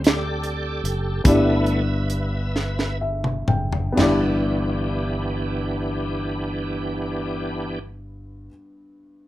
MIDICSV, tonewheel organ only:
0, 0, Header, 1, 2, 480
1, 0, Start_track
1, 0, Key_signature, 1, "major"
1, 0, Tempo, 800000
1, 751, Time_signature, 6, 3, 24, 8
1, 751, Tempo, 848656
1, 1231, Tempo, 903614
1, 1711, Tempo, 974026
1, 2191, Tempo, 1015228
1, 4697, End_track
2, 0, Start_track
2, 0, Title_t, "Tonewheel organ"
2, 0, Program_c, 0, 16
2, 44, Note_on_c, 0, 74, 81
2, 46, Note_on_c, 0, 69, 57
2, 48, Note_on_c, 0, 67, 57
2, 489, Note_off_c, 0, 74, 0
2, 735, Note_off_c, 0, 69, 0
2, 736, Note_off_c, 0, 67, 0
2, 760, Note_on_c, 0, 57, 47
2, 763, Note_on_c, 0, 59, 39
2, 764, Note_on_c, 0, 76, 80
2, 766, Note_on_c, 0, 64, 50
2, 766, Note_on_c, 0, 71, 62
2, 1072, Note_off_c, 0, 57, 0
2, 1074, Note_off_c, 0, 59, 0
2, 1075, Note_off_c, 0, 64, 0
2, 1696, Note_off_c, 0, 76, 0
2, 1697, Note_off_c, 0, 71, 0
2, 2193, Note_on_c, 0, 59, 53
2, 2195, Note_on_c, 0, 67, 66
2, 2196, Note_on_c, 0, 52, 56
2, 2197, Note_on_c, 0, 62, 54
2, 3992, Note_off_c, 0, 59, 0
2, 3993, Note_off_c, 0, 52, 0
2, 3993, Note_off_c, 0, 67, 0
2, 3994, Note_off_c, 0, 62, 0
2, 4697, End_track
0, 0, End_of_file